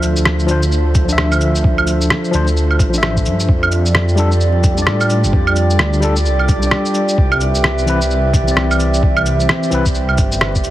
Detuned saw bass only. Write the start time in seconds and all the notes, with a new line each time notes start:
Already playing: D2
0.17 D2
2.34 D2
2.79 A1
3.26 G2
3.49 F2
4.87 A2
5.24 F1
5.33 F2
5.79 D2
6.26 C2
7.18 C2
7.55 C2
9.72 C2
10.18 G1
10.65 E2